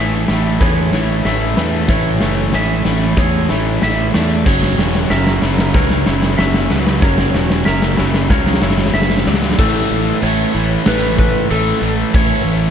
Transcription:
Already playing: A1 A3 C#4 G#4 C#5 E5
0.00 A2 E3 A3
0.28 A1 A2 E3 A3 E4, snare
0.60 E2 A2 E3 A3 G#4 B4 C#5, kick, snare
0.92 A1 A2 E3 A3 E4 C#5, snare
1.25 A1 A2 E3 A3 C#4 E5, snare
1.57 E2 A2 E3 A3 B4, snare
1.88 A1 A2 E3 A3 C#5, kick, snare
2.20 F#1 A2 E3 A3 C#4, snare
2.53 A1 A2 E3 A3 G#4 E5, snare
2.85 A1 A2 E3 A3 E4, snare
3.17 E2 A2 E3 A3 G#4 C#5, kick, snare
3.49 A1 A2 E3 A3 E4 C#5, snare
3.82 A1 A2 E3 A3 E5, snare
4.14 E2 A2 E3 A3 D5, snare
4.46 F#1 F#2 C#3 F#3 C#5, kick, snare, crash
4.63 snare
4.78 E1 F#2 C#3 F#3 C#4, snare
4.95 snare
5.10 F#1 F#2 C#3 F#3 A#4 E5, snare
5.27 snare
5.42 F#1 F#2 C#3 F#3 E4, snare
5.58 snare
5.74 C#2 F#2 C#3 F#3 A#4 B4 C#5, kick, snare
5.90 snare
6.06 F#1 F#2 C#3 F#3 E4 C#5, snare
6.22 snare
6.38 F#1 F#2 C#3 F#3 C#4 E5, snare
6.54 snare
6.70 C#2 F#2 C#3 F#3 B4, snare
6.87 snare
7.02 F#1 F#2 C#3 F#3 A#4 C#5, kick, snare
7.18 snare
7.34 E1 F#2 C#3 F#3 C#4, snare
7.50 snare
7.65 F#1 F#2 C#3 F#3 A#4 E5, snare
7.82 snare
7.97 F#1 F#2 C#3 F#3 E4, snare
8.14 snare
8.30 C#2 F#2 C#3 F#3 A#4 C#5, kick, snare
8.46 snare
8.54 snare
8.62 F#1 F#2 C#3 F#3 E4 C#5, snare
8.70 snare
8.78 snare
8.86 snare
8.94 F#1 F#2 C#3 F#3 E5, snare
9.02 snare
9.10 snare
9.18 snare
9.26 C#2 F#2 C#3 F#3 D5, snare
9.34 snare
9.42 snare
9.51 snare
9.59 A1 A2 E3 A3 A4, kick, crash
9.91 A1
10.22 A1 A2 E3 A3 C#5, crash
10.55 A1 A2 E3 A3
10.86 A1 A2 E3 A3 B4, snare, crash
11.18 B4, kick
11.51 A1 A2 E3 A3 A4, crash
11.82 A1 A2 E3 A3
12.14 A1 A2 E3 A3 C#5, kick, crash
12.46 A1

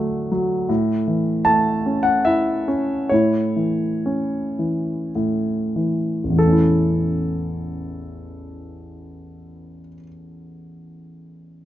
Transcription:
Already playing: D2 A2 D3 F#3 A3 A4 F#5
0.32 F#3
0.69 A2
1.08 E3
1.45 A3 A5
1.86 C#4
2.03 F#5
2.25 E4 E5
2.68 C#4
3.09 A2 C#5
3.14 E4
3.56 E3
4.06 C#4
4.59 E3
5.15 A2
5.76 E3
6.24 A1
6.30 E2
6.36 E3 A4
6.41 A3
6.47 C#4
6.52 E4

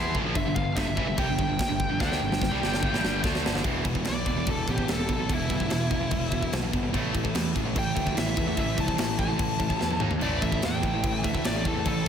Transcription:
Already playing: E2 E3 B3 E4 C6
0.13 A1 A2 E3, kick
0.24 A#1 A#2 F3
0.34 G1 G2 D3 E5, kick, crash
0.44 G1 G2 D3
0.55 G1 G2 D3 F5, kick
0.76 G1 G2 D3 E5, kick, snare, crash
0.86 G1 G2 D3
0.97 A1 A2 E3, kick
1.06 G1 G2 D3
1.16 C2 C3 G3 G5, kick, crash
1.26 G1 G2 D3
1.37 G1 G2 D3, kick
1.47 G1 G2 D3
1.57 muted distorted electric guitar stroke, muted picked electric bass stroke, kick, snare, crash
1.68 G1 G2 D3
1.80 kick
1.90 G1 G2 D3
1.99 D2 D3 A3 D4 G5, kick, snare
2.12 snare
2.19 G1 G2 D3
2.29 G1 G2 D3, snare
2.38 G1 G2 D3, kick
2.43 D3, snare
2.50 C2 C3 G3
2.59 G1 G2 D3 G3
2.63 G2 D3, snare
2.74 snare
2.80 G1 G2 D3, kick
2.91 A1 A2 E3, snare
3.00 G2 D3 G3
3.04 G1, snare
3.22 D2 D3 A3 D4, kick, snare
3.35 snare
3.42 G2 D3, snare
3.46 G1
3.53 G1 G2 D3, snare
3.62 E1 E2 B2 E3, kick, crash
3.84 E1 E2 B2, kick, crash
3.93 E2 B2, kick
4.04 B1 E2 B2, snare, crash
4.09 D5
4.26 E1 E2 B2, kick, crash
4.37 E2 B2
4.47 E1 E2 B2 A4, kick, crash
4.67 A1 E2 B2 G4, kick, crash
4.77 E2 B2, kick
4.87 E1 E2 B2, snare, crash
4.93 A4
4.98 E2 B2
5.08 B1 E2 B2, kick, crash
5.14 A4
5.18 E2 B2
5.27 E1 E2 B2, kick, crash
5.32 E3 E4
5.47 G1 E2 B2, kick, crash
5.58 E2 B2, kick
5.69 E1 E2 B2, snare, crash
5.91 E2 B2, kick, crash
6.01 E2 B2
6.11 E1 E2 B2, kick, crash
6.31 E1 E2 B2, kick, crash
6.41 E2 B2, kick
6.51 B1 E2 B2, snare, crash
6.63 E2 B2
6.72 G1 E2 B2, kick, crash
6.83 E2 B2
6.93 A1 A2 E3 A3, kick, crash
7.13 A1 A2 E3, kick, crash
7.24 A2 E3, kick
7.34 E2 A2 E3, snare, crash
7.55 A1 A2 E3, kick, crash
7.66 A2 E3
7.75 A1 A2 E3 G5, kick, crash
7.95 D2 A2 E3, kick, crash
8.06 A2 E3, kick
8.15 A1 A2 E3 E5, snare, crash
8.26 A2 E3
8.37 E2 A2 E3, kick, crash
8.47 A2 E3
8.57 A1 A2 E3 E5, kick, crash
8.61 A3
8.77 C2 A2 E3 A5, kick, crash
8.87 A2 E3, kick
8.98 A1 A2 E3, snare, crash
9.18 A2 E3 A5, kick, crash
9.29 A2 E3
9.39 A1 A2 E3, kick, crash
9.59 A1 A2 E3, kick, crash
9.70 A2 E3, kick
9.80 E2 A2 E3, snare
9.91 A2 E3, high tom
10.00 D#2 D#3 A#3 D#4, mid tom
10.11 D#3 A#3, floor tom
10.21 A1 A2 E3 A3 D5, crash
10.42 A1 A2 E3 E5, kick, crash
10.52 A2 E3, kick
10.62 E2 A2 E3 G5, snare, crash
10.83 A1 A2 E3, kick, crash
10.95 A2 E3
11.04 A1 A2 E3, kick, crash
11.24 D2 A2 E3 E5, kick, crash
11.35 A2 E3, kick
11.44 A1 A2 E3 D5, snare, crash
11.56 A2 E3
11.65 E2 A2 E3 A4, kick, crash
11.77 A2 E3
11.85 A1 A2 E3 A3 A4, kick, crash

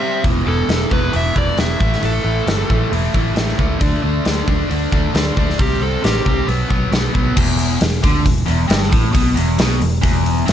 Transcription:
Already playing: E5
0.00 C3 G3 C4
0.24 E1 E2 B2 E3, kick, open hi-hat
0.45 E1 E2 B2 E3 A4
0.68 E1 E2 B2 E3, snare, open hi-hat
0.91 E1 E2 B2 E3 B4, kick
1.12 E1 E2 B2 E3 E5, open hi-hat
1.35 E1 E2 B2 E3 D5, kick
1.58 E1 E2 B2 E3 E5, snare, open hi-hat
1.79 A1 A2 E3 A3, kick
1.93 snare
2.01 A1 A2 E3 A3, open hi-hat
2.05 A4
2.24 A1 A2 E3 A3
2.47 G1 A2 E3 A3, snare, open hi-hat
2.70 A1 A2 E3 A3, kick
2.92 E1 A2 E3 A3, open hi-hat
3.14 A1 A2 E3 A3, kick
3.35 A1 A2 E3 A3, snare, open hi-hat
3.49 snare
3.58 C#2 A2 E3 A3, kick
3.79 D2 D3 A3 D4, kick, open hi-hat
4.02 D2 D3 A3 D4
4.25 D2 D3 A3 D4, snare, open hi-hat
4.47 D2 D3 A3 D4, kick
4.69 D2 D3 A3 D4, open hi-hat
4.92 D2 D3 A3 D4, kick
5.14 D2 D3 A3 D4, snare, open hi-hat
5.37 D2 D3 A3 D4, kick
5.50 snare
5.59 C2 C3 G3 C4 G4, kick, open hi-hat
5.80 C2 C3 G3 C4 A4
6.02 A1 C3 G3 C4 G4, snare, open hi-hat
6.25 C2 C3 G3 C4, kick
6.47 B1 B2 F#3 B3, open hi-hat
6.69 B1 B2 F#3 B3, kick
6.91 B1 B2 F#3 B3, snare, open hi-hat
7.13 B1 B2 F#3 B3, kick
7.36 E1 E2, kick, crash
7.59 open hi-hat
7.80 E1 E2, snare, open hi-hat
8.03 D2 D3, kick, open hi-hat
8.24 E1 E2, kick, open hi-hat
8.46 E1 E2, open hi-hat
8.67 G1 G2, snare, open hi-hat
8.83 snare
8.89 A1 A2, kick, open hi-hat
9.13 B1 B2, kick, open hi-hat
9.35 E1 E2, open hi-hat
9.58 B1 B2, snare, open hi-hat
9.80 E1 E2, open hi-hat
10.01 E1 E2, kick, open hi-hat
10.26 open hi-hat
10.46 G1 G2, snare, open hi-hat

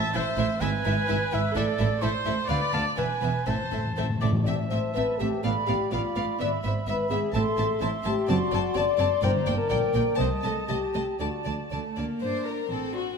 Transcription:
Already playing: A2 E5 A5
0.14 A1 A2 E4 C5 E5
0.37 A1 A2 E4 C5 E5
0.61 G#1 G#2 E4 B4 E5 G#5
0.85 G#1 G#2 E4 B4 E5
1.08 G#1 G#2 E4 B4 E5
1.32 G#1 G#2 E4 B4 E5
1.55 A1 A2 E4 A4 D5 E5
1.79 A1 A2 E4 A4 E5
2.01 A1 A2 E4 A4 C5 E5
2.25 A1 A2 E4 A4 E5
2.48 D2 B3 B4 D5 F5
2.72 D2 B3 B4 F5 A5
2.97 E1 E2 B3 B4 E5 G#5
3.21 E1 E2 B3 B4 E5
3.46 A1 A2 C4 A4 C5 E5 A5
3.55 A2
3.63 A2
3.71 A1 A2 C4 A4 E5
3.78 A2
3.85 A2
3.93 A2 C4 A4 C5
3.98 A1 A2 E5
4.09 A2
4.17 A2 C4 E5
4.21 A1 A2 A4 D5
4.32 A2
4.44 A1 A2 C4 D5 E5 A5
4.49 E5
4.70 A1 A2 C4 C5 E5
4.94 A1 A2 C4 B4 E5
5.19 A1 A2 C4 G4 E5
5.43 A1 A2 B3 A4 D5 F5 B5
5.67 A1 A2 B3 G4 D5 F5
5.92 A1 A2 B3 F4 D5 F5 B5
6.16 A1 A2 B3 D5 F5
6.40 G#1 G#2 B3 D5 E5 B5
6.64 G#1 G#2 B3 C5 E5
6.87 G#1 G#2 B3 B4 E5 B5
7.10 G#1 G#2 B3 G#4 E5
7.33 A1 A2 C4 A4 E5 A5 C6
7.58 A1 A2 C4 E5 A5
7.80 A1 A2 C4 E4 E5 A5 C6
8.03 A1 A2 C4 G4 E5 A5
8.28 F#1 F#2 C4 F#4 D5 A5 C6
8.51 F#1 F#2 C4 D5 A5
8.75 F#1 F#2 C4 D5 A5 C6
8.98 F#1 F#2 C4 D5 A5
9.22 G1 G2 A#3 C5 D5 G5 A#5
9.46 G1 G2 A#3 D5 G5 A5
9.58 A#4
9.69 A#1 A#2 A#3 D5 G5
9.93 A#1 A#2 A#3 D5 G5
10.17 C2 C3 A3 C5 D#5 A5
10.42 C2 C3 A3 A4 D#5 A5
10.68 C2 C3 A3 G4 D#5 A5
10.94 C2 C3 A3 D#5 A5
11.20 D2 D3 A3 F#4 D5 A5
11.44 D2 D3 A3 D5 A5
11.71 D2 D3 A3 D5 A5
11.97 D2 D3 A#3 D5 A5
12.22 G2 D4 C5
12.46 D4 A#4 A#5
12.70 A1 C4 A4
12.93 D4 F#4 C6

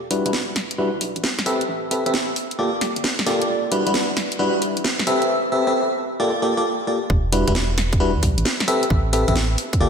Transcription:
Already playing: E1
0.11 G3 D4 E4 F#4 B4, open hi-hat
0.26 E1 G3 D4 E4 F#4 B4, closed hi-hat
0.33 snare
0.56 snare, open hi-hat
0.71 closed hi-hat
0.78 G3 D4 E4 F#4 B4
0.93 E2
1.01 B1, open hi-hat
1.16 A1, closed hi-hat
1.24 snare
1.39 snare, closed hi-hat
1.46 C4 G4 A4 B4 E5, open hi-hat
1.61 closed hi-hat
1.69 A1
1.91 C4 G4 A4 B4 E5, open hi-hat
2.06 A1 C4 G4 A4 B4 E5, closed hi-hat
2.14 snare
2.36 open hi-hat
2.51 closed hi-hat
2.59 G1 A#3 F4 G4 A4 D5
2.81 snare, open hi-hat
2.96 G1, closed hi-hat
3.04 snare
3.19 snare, closed hi-hat
3.26 G1 A#3 F4 G4 A4 D5, snare, open hi-hat
3.42 closed hi-hat
3.49 E1
3.72 G3 D4 E4 F#4 B4, open hi-hat
3.86 E1 G3 D4 E4 F#4 B4, closed hi-hat
3.94 snare
4.17 snare, open hi-hat
4.32 closed hi-hat
4.39 G3 D4 E4 F#4 B4
4.54 E2
4.62 B1, open hi-hat
4.77 A1, closed hi-hat
4.84 snare
4.99 snare, closed hi-hat
5.07 C4 G4 A4 B4 E5, open hi-hat
5.22 closed hi-hat
5.52 C4 G4 A4 B4 E5
5.67 C4 G4 A4 B4 E5
6.20 A#3 F4 G4 A4 D5
6.42 A#3 F4 G4 A4 D5
6.57 A#3 F4 G4 A4 D5
6.87 A#3 F4 G4 A4 D5
7.10 E1, kick
7.32 G3 D4 E4 F#4 B4, open hi-hat
7.47 E1 G3 D4 E4 F#4 B4, kick, closed hi-hat
7.55 snare
7.78 snare, open hi-hat
7.93 kick, closed hi-hat
8.00 G3 D4 E4 F#4 B4
8.15 E2
8.23 B1, kick, open hi-hat
8.38 A1, closed hi-hat
8.45 snare
8.60 snare, closed hi-hat
8.68 C4 G4 A4 B4 E5, open hi-hat
8.83 closed hi-hat
8.90 A1, kick
9.13 C4 G4 A4 B4 E5, open hi-hat
9.28 A1 C4 G4 A4 B4 E5, kick, closed hi-hat
9.36 snare
9.58 open hi-hat
9.73 kick, closed hi-hat
9.80 G1 A#3 F4 G4 A4 D5

